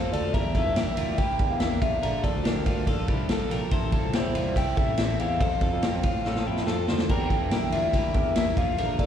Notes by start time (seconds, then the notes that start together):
Already playing: C3 F3 A3 C4 F4 A4 C5
0.13 D2 C4 F4 A4 D5, ride
0.33 E2 E3 G3 A#3 D4 E4 G4 A#4 E5, kick, ride
0.54 D4 E4 F4 A4 A#4 E5, kick, ride
0.66 G2
0.76 A#1 E3 G3 D4 E4 G4 A#4, snare, ride
0.97 D2 D4 E4 F4 A#4, ride
1.18 G3 D4 E4 G4 A#4 G5, kick, ride
1.39 E2 D4 E4 A#4, kick, ride
1.50 F5
1.60 E3 G3 A#3 D4 E4 A#4, snare, ride
1.81 A#1 D3 F3 A#3 D4 F4 A4 E5, kick, ride
2.03 A#1 A#2 D3 F3 A#3 D4 F4 A4 A#4, ride
2.23 A#3 D4 F4 A4 D5, kick, ride
2.27 F3
2.35 D2
2.44 A#2 D3 F3 A#3 D4 G4 A4 A#4, snare, ride
2.66 D2 F3 A#3 D4 F4 A4, kick, ride
2.87 A#1 F3 A#3 D4 F4 A4, kick, snare, ride
3.08 C2 F3 A#3 D4 E4 G4 A4, kick, ride
3.29 A#2 D3 F3 A#3 D4 F4 A4, snare, ride
3.50 A#1 F3 A#3 D4 G4 A4 A#4, ride
3.71 A1 A2 C3 E3 G3 C4 E4 A4 C5, kick, ride
3.92 G3 C4 E4 F4 A4, kick, ride
4.04 C2
4.13 E2 A2 E3 G3 C4 E4 G4 A4 C5, snare, ride
4.25 C5
4.34 C2 G3 C4 D4 E4 F4 A4, ride
4.55 G3 C4 E4 G4 A4 G5, kick, snare, ride
4.76 A1 G3 C4 E4 A4 E5, kick, ride
4.97 A2 E3 G3 C4 E4 A4, snare, ride
5.19 E2 G3 C4 E4 G4 A4 F5, ride
5.40 F2 A2 F3 A3 C4 F4 A4 C5, kick, ride
5.61 C4 F4 A4, kick, ride
5.73 F2
5.82 F3 A3 C4 F4 G4 A4, snare, ride
6.03 A2 C4 D4 F4 A4, kick, ride
6.25 A2 A3 C4 F4 A4, snare
6.36 snare
6.45 F2 C4 E4 F4 G4 A4
6.57 snare
6.67 F3 A3 C4 F4 A4, snare
6.87 D2 C4 F4 A4 C5, snare
6.98 snare
7.08 E2 D3 E3 G3 A#3 D4 E4 G4 A#4 G5, kick, crash
7.30 D4 E4 F4 G4 A4 A#4, kick, ride
7.42 G2
7.51 A#1 E3 G3 D4 E4 G4 A#4, snare, ride
7.72 D2 D4 E4 F4 G4 A#4 E5, ride
7.93 G3 D4 E4 G4 A#4, kick, snare, ride
8.14 E2 D4 E4 G4 A#4 E5, kick, ride
8.35 E3 G3 A#3 D4 E4 G4 A#4 E5, snare, ride
8.56 A#1 D3 F3 A#3 D4 F4 A4 A#4 F5, kick, ride
8.78 A#1 A#2 D3 F3 A#3 D4 F4 A4 A#4, ride
8.98 F3 A#3 D4 F4 A4 A#4 D5, kick, ride